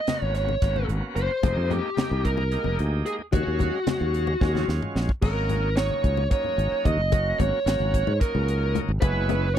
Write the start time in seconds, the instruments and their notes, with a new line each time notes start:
Already playing: lead electric guitar D#5
0.07 tonewheel organ A#3 B3 C#4 F#4, snare, closed hi-hat, high conga
0.22 fretless electric bass G#1, lead electric guitar C#5
0.34 lead electric guitar C#5, snare, closed hi-hat
0.49 muted conga
0.62 fretless electric bass G#1, tonewheel organ A#3 B3 C#4 F#4, kick, snare, closed hi-hat
0.76 high conga, low conga
0.88 fretless electric bass G#1, closed hi-hat, low conga
1.16 fretless electric bass F#1, lead electric guitar C5, closed hi-hat
1.43 fretless electric bass F1, tonewheel organ G#3 A#3 D#4 G4, kick, closed hi-hat, muted conga, high conga
1.57 fretless electric bass F2
1.70 lead electric guitar G4, closed hi-hat, low conga
1.96 tonewheel organ G#3 A#3 D#4 G4, muted fretless electric bass stroke, snare, closed hi-hat, high conga
2.11 fretless electric bass C2
2.25 lead electric guitar A#4, kick, closed hi-hat
2.37 muted conga
2.51 tonewheel organ G#3 A#3 D#4 G4, closed hi-hat
2.64 fretless electric bass F1, high conga, low conga
2.78 fretless electric bass D2, closed hi-hat, low conga
3.06 lead electric guitar G#4, closed hi-hat
3.19 low conga
3.32 fretless electric bass D#2, tonewheel organ F#3 G#3 C#4 F5, lead electric guitar F#4, kick, closed hi-hat, muted conga, high conga
3.47 fretless electric bass D#2
3.59 kick, closed hi-hat, low conga
3.87 tonewheel organ F#3 G#3 C#4 F5, snare, closed hi-hat, high conga
4.01 fretless electric bass D#2
4.14 closed hi-hat
4.27 muted conga
4.40 fretless electric bass D#2, tonewheel organ F#3 G#3 C#4 F4, kick, snare
4.55 snare, high conga, low conga
4.68 fretless electric bass D#2, snare, low conga
4.82 mid tom
4.96 fretless electric bass A#1, snare
5.09 kick
5.22 fretless electric bass G#1, tonewheel organ F#3 A#3 C#4 D#4, lead electric guitar A#4, kick, crash, muted conga, low conga
5.49 closed hi-hat, low conga
5.77 tonewheel organ F#3 A#3 C#4 D#4, lead electric guitar C#5, snare, closed hi-hat
5.90 high conga
6.04 fretless electric bass C#2, kick, closed hi-hat
6.17 muted conga
6.31 tonewheel organ F#3 A#3 C#4 D#4, lead electric guitar C#5, kick, closed hi-hat
6.44 low conga
6.58 fretless electric bass G#1, closed hi-hat
6.72 muted fretless electric bass stroke, low conga
6.85 fretless electric bass D#2, lead electric guitar D#5, kick, closed hi-hat, high conga, low conga
6.97 fretless electric bass F#1
7.12 tonewheel organ F#3 A#3 C#4 F#4, kick, closed hi-hat, muted conga, low conga
7.39 fretless electric bass G#1, lead electric guitar C#5, kick, closed hi-hat, low conga
7.66 fretless electric bass G#1, tonewheel organ F#3 A#3 C#4 F#4, snare, closed hi-hat
7.80 fretless electric bass G#1, high conga
7.94 kick, closed hi-hat
8.07 fretless electric bass G#2, muted conga
8.20 tonewheel organ F#3 A#3 C#4 D#4, lead electric guitar A#4, kick, closed hi-hat
8.35 fretless electric bass C#2, low conga
8.48 closed hi-hat
8.62 low conga
8.75 closed hi-hat, high conga, low conga
8.88 fretless electric bass G#1
9.01 fretless electric bass F#1, tonewheel organ G#3 B3 C#4 E4, lead electric guitar B4, kick, closed hi-hat, muted conga, low conga
9.29 closed hi-hat, low conga
9.55 lead electric guitar C#5